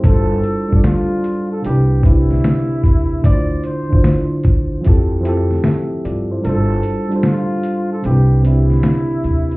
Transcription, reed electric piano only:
0.00 0.57 G3 medium
0.00 0.58 D4 medium
0.00 0.30 E4 medium
0.06 0.59 F4 medium
0.06 0.60 A4 medium
0.06 0.61 C5 medium
0.69 1.63 G3 medium
0.69 1.64 D4 medium
0.69 1.65 F4 medium
0.74 1.66 A4 medium
0.74 1.67 D5 medium
1.62 1.99 C3 medium
1.62 2.00 C4 medium
1.62 2.01 D4 medium
1.67 2.02 E4 medium
1.67 2.03 B4 medium
2.02 3.11 C3 medium
2.02 3.12 C4 medium
2.02 3.13 D4 medium
2.08 3.14 E4 medium
2.08 3.15 G4 medium
3.22 3.77 D3 medium
3.22 3.78 D4 medium
3.22 3.79 E4 medium
3.27 3.80 F4 medium
3.27 3.81 C5 medium
3.89 4.83 D3 medium
3.89 4.84 D4 medium
3.89 4.84 E4 medium
3.94 4.86 F4 medium
3.94 4.87 C5 medium
4.81 5.18 F3 medium
4.81 5.20 C4 medium
4.81 5.20 E4 medium
4.87 5.21 G4 medium
4.87 5.22 A4 loud
5.21 6.30 F3 medium
5.21 6.31 C4 medium
5.21 5.64 E4 medium
5.27 5.64 G4 medium
5.27 5.66 A4 medium
5.65 6.03 G4 medium
5.65 6.02 E5 medium
6.05 6.30 F4 medium
6.05 6.29 D5 medium
6.31 6.69 E4 medium
6.31 6.48 C5 medium
6.41 6.97 G3 medium
6.41 6.98 D4 medium
6.46 6.99 F4 medium
6.46 7.00 A4 medium
6.46 7.01 C5 medium
7.08 8.03 G3 medium
7.08 8.04 D4 medium
7.08 8.05 F4 medium
7.14 8.06 A4 medium
7.14 8.06 C5 medium
8.02 8.39 C3 medium
8.02 8.40 C4 medium
8.02 8.41 D4 medium
8.07 8.42 E4 medium
8.07 8.43 B4 medium
8.42 9.51 C3 medium
8.42 9.52 C4 medium
8.46 9.53 D4 medium
8.46 9.54 E4 medium
8.46 9.55 G4 medium

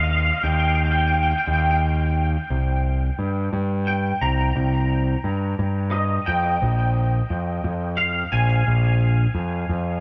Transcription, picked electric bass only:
0.00 0.30 D#2 medium
0.44 1.32 D#2 medium
1.47 2.36 D#2 medium
2.50 3.09 C2 medium
3.19 3.48 G2 medium
3.53 4.12 G2 medium
4.21 4.51 C2 medium
4.56 5.14 C2 medium
5.24 5.54 G2 medium
5.59 6.18 G2 medium
6.28 6.57 F2 medium
6.62 7.20 A#1 medium
7.30 7.59 F2 medium
7.64 8.23 F2 medium
8.32 8.62 A#1 medium
8.67 9.25 A#1 medium
9.35 9.64 F2 medium
9.69 10.00 F2 medium

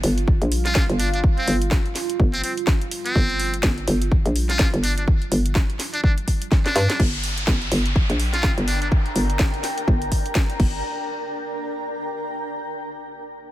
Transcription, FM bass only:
0.04 0.39 G1 loud
0.42 0.87 A#1 loud
0.90 1.22 G1 loud
1.48 1.94 G1 medium
2.20 2.42 G1 loud
3.16 3.62 G1 loud
3.64 3.86 G1 medium
3.88 4.23 G1 loud
4.26 4.71 A#1 loud
4.74 5.06 G1 loud
5.32 5.78 G1 medium
6.76 6.87 G2 loud
7.00 7.46 G1 loud
7.48 7.70 G1 medium
7.72 8.07 G1 loud
8.10 8.55 A#1 medium
8.58 8.90 G1 loud
9.16 9.62 G1 medium
9.88 10.10 G1 loud
10.60 10.82 G1 medium

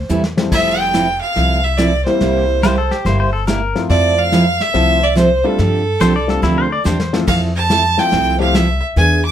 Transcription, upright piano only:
0.37 0.91 F3 medium
0.37 0.91 G3 medium
0.37 0.91 A3 medium
0.37 0.91 C4 medium
0.37 0.91 E4 medium
2.06 2.60 E3 medium
2.06 2.60 G3 medium
2.06 2.60 A#3 medium
2.06 2.60 C4 medium
2.06 2.60 E4 medium
3.75 4.29 F3 medium
3.75 4.29 A3 medium
3.75 4.29 C4 medium
3.75 4.29 E4 medium
3.75 4.29 F4 medium
4.74 4.99 F3 medium
4.74 4.99 A3 medium
4.74 4.99 C4 medium
4.74 4.99 E4 medium
4.74 4.99 F4 medium
5.44 5.57 G3 medium
5.44 5.57 A3 medium
5.44 5.57 C4 medium
5.44 5.57 D4 medium
5.44 5.57 F4 medium
6.27 6.41 G3 medium
6.27 6.41 A3 medium
6.27 6.41 C4 medium
6.27 6.41 D4 medium
6.27 6.41 F4 medium
7.13 7.26 F3 medium
7.13 7.26 A3 medium
7.13 7.26 C4 medium
7.13 7.26 E4 medium
7.13 7.26 F4 medium
7.97 8.37 F3 medium
7.97 8.37 A3 medium
7.97 8.37 C4 medium
7.97 8.37 E4 medium
7.97 8.37 F4 medium
8.39 8.53 F3 medium
8.39 8.53 A3 medium
8.39 8.53 C4 medium
8.39 8.53 E4 medium
8.39 8.53 G4 loud

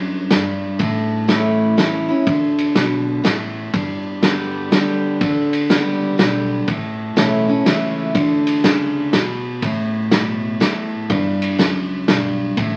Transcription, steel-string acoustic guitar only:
0.00 0.29 F#2 medium
0.30 0.78 G2 medium
0.79 1.74 A2 medium
1.28 1.75 E3 medium
1.28 1.76 A3 medium
1.28 1.76 C#4 medium
1.28 1.76 E4 medium
1.77 2.08 E3 medium
1.77 2.08 A3 soft
1.77 2.08 C#4 medium
1.77 2.08 E4 medium
2.09 2.26 C#4 soft
2.09 2.26 E4 soft
2.27 3.21 D3 medium
2.75 3.23 B2 medium
3.24 3.71 A2 medium
3.74 4.68 G2 medium
4.23 4.70 D3 medium
4.23 4.70 G3 medium
4.23 4.71 B3 medium
4.23 4.71 G4 medium
4.71 5.19 D3 medium
4.71 5.19 G3 medium
4.71 5.19 B3 medium
4.71 5.20 G4 medium
5.21 6.15 D3 medium
5.70 6.17 G3 medium
5.70 6.17 B3 medium
5.70 6.18 G4 medium
6.18 6.66 D3 soft
6.18 6.66 G3 soft
6.18 6.66 B3 medium
6.18 6.67 G4 medium
6.68 7.62 A2 medium
7.16 7.47 E3 medium
7.16 7.47 A3 medium
7.16 7.48 C#4 medium
7.16 7.47 E4 medium
7.48 7.66 C#4 soft
7.48 7.65 E4 soft
7.66 8.13 E3 soft
7.66 8.13 A3 medium
7.66 8.14 C#4 medium
7.66 8.14 E4 medium
8.15 9.10 D3 medium
8.65 9.12 C#3 medium
9.14 9.61 B2 medium
9.63 10.57 A2 medium
10.12 10.59 B2 medium
10.60 11.08 A2 medium
11.10 11.58 G2 medium
11.58 12.06 F#2 medium
12.09 12.55 G2 medium
12.58 12.77 A2 medium

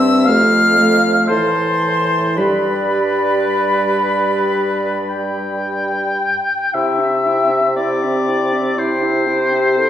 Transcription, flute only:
0.00 0.29 E6 loud
0.28 1.29 F6 loud
1.29 2.39 C6 loud
2.38 6.19 B5 medium
6.74 7.02 G5 medium
7.01 7.28 E5 medium
7.27 7.55 G5 medium
7.54 7.77 E5 medium
7.78 8.04 G5 medium
8.03 8.30 E5 medium
8.28 8.55 G5 medium
8.53 8.77 E5 soft
8.77 9.05 G5 medium
9.04 9.29 E5 medium
9.28 9.55 G5 medium
9.54 9.78 E5 medium
9.78 9.90 G5 medium

